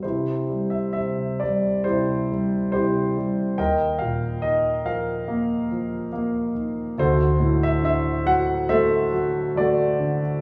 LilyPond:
<<
  \new Staff \with { instrumentName = "Grand piano" } { \time 4/4 \key c \lydian \tempo 4 = 70 << { c''8. e''16 e''8 d''8 c''4 c''4 | g''8 f''8 ees''8 f''2 r8 | c''8. e''16 e''8 fis''8 e''4 d''8. r16 | } \\ { <e' g'>2 <e' g'>4 <e' g'>4 | <bes' ees''>4. bes'2 r8 | <fis' a'>2 <a' c''>4 <fis' a'>4 | } >> }
  \new Staff \with { instrumentName = "Grand piano" } { \clef bass \time 4/4 \key c \lydian c8 g8 c8 g8 c8 g8 c8 g8 | ees,8 bes,8 ees8 f8 bes8 f8 bes8 ees8 | d,8 a,8 d8 fis8 a8 fis8 a8 d8 | }
>>